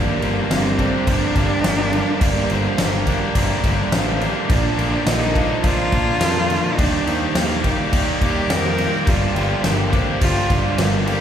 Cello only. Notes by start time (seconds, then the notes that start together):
Already playing: A#3
0.50 C4
1.07 D4
2.22 A#3
4.48 D4
5.07 D#4
5.64 F4
6.79 D4
8.23 G4
8.51 A#4
9.09 F4
10.22 F4
11.08 G4